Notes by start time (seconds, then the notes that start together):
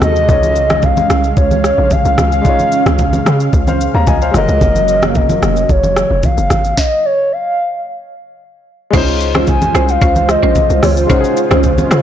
Already playing: C3 G#3 C4 D#4 F#4 A4
0.02 D#2 D#5, cross-stick, high conga, low conga, shaker
0.16 shaker
0.26 C#2 C#3 G#3 C#4 D#4 F5, kick, low conga, shaker
0.31 F4 C#5
0.43 high conga, shaker
0.56 shaker
0.70 cross-stick, high conga, shaker
0.82 F5, kick, low conga, shaker
0.97 high conga, shaker
1.10 C2, cross-stick, shaker
1.24 shaker
1.37 C#2 C#5, kick, shaker
1.51 high conga, shaker
1.64 cross-stick, shaker
1.78 A#1
1.91 F5, kick, high conga, low conga, shaker
2.05 C2, shaker
2.18 C#2, cross-stick, high conga, low conga, shaker
2.32 F5, shaker
2.42 G#3 C#4 D#4, kick, low conga, shaker
2.47 F4 C#5
2.59 high conga, shaker
2.72 shaker
2.86 C#2, cross-stick, high conga, shaker
2.98 kick, low conga, shaker
3.13 high conga, shaker
3.26 C#3, cross-stick, shaker
3.40 shaker
3.53 C#2, kick, shaker
3.67 C5 F5, high conga, shaker
3.81 shaker
3.94 D#2 F5 A#5
4.07 C#2 D#5 G#5, kick, high conga, low conga, shaker
4.22 C5 F5, shaker
4.31 F#1 C#3 F#3 G#3 A#3 C#4 F4 D#5, cross-stick, high conga, low conga, shaker
4.36 F#4 A#4
4.48 C#2, shaker
4.61 F#1, kick, low conga, shaker
4.75 high conga, shaker
4.88 shaker
5.02 cross-stick, high conga, shaker
5.09 F5
5.15 D#5, kick, low conga, shaker
5.29 high conga, shaker
5.42 F1, cross-stick, shaker
5.56 shaker
5.69 F#1 C#5, kick, shaker
5.83 high conga, shaker
5.96 cross-stick, shaker
6.11 F1
6.23 F5, kick, high conga, low conga, shaker
6.38 F#1, shaker
6.50 G#1, cross-stick, high conga, low conga, shaker
6.64 shaker
6.77 D#5, kick, snare
7.05 C#5
7.32 F5
8.90 C#2 C#3 G#3 C#4 D#4 F4 C5, kick, crash, low conga, shaker
8.96 E4 C5
9.02 F4
9.08 shaker
9.21 shaker
9.35 C#4 F4 C5, cross-stick, high conga, shaker
9.47 G#5, kick, low conga, shaker
9.62 high conga, shaker
9.75 C2 C#4 F4 C5, cross-stick, shaker
9.88 F5, shaker
10.01 C#2 C#4 F4 C5, kick, shaker
10.16 high conga, shaker
10.29 D#5, cross-stick, shaker
10.43 A#1 C#4 F4 C5
10.55 kick, high conga, low conga, shaker
10.70 C2, shaker
10.83 C#2 C#5, cross-stick, open hi-hat, high conga, shaker
10.97 C5, shaker
11.07 G#3 C#4 D#4 F4 C5, kick, low conga, shaker
11.12 F4 F#4
11.20 G#4, shaker
11.37 shaker
11.51 C#2 C#4 F4 C5, cross-stick, high conga, shaker
11.63 kick, low conga, shaker
11.78 high conga, shaker
11.91 C#3 C#4 F4 C5, cross-stick, shaker